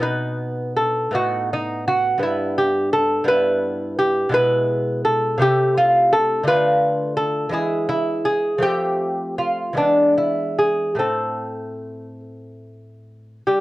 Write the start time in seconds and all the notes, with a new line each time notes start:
0.00 B2 B3 D#4 B4
0.77 A4
1.11 A2 B3 D#4 F#4
1.53 D#4
1.88 F#4
2.18 G2 B3
2.23 E4
2.58 G4
2.93 A4
3.24 G2 B3 E4 B4
3.99 G4
4.29 B2 G#3 E4
4.34 B4
5.05 A4
5.38 C3 A3 E4
5.42 G4
5.78 F4
6.13 A4
6.43 D3 A3 F4
6.48 B4
7.17 A4
7.49 E3 G#3 E4
7.53 G#4
7.89 E4
8.25 G#4
8.58 F3 A3 C4
8.62 G4
9.38 F4
9.73 E3 G#3 B3
9.77 D4
10.18 E4
10.59 G#4
10.95 A2 A3 C4
10.99 A4
13.47 G3 G4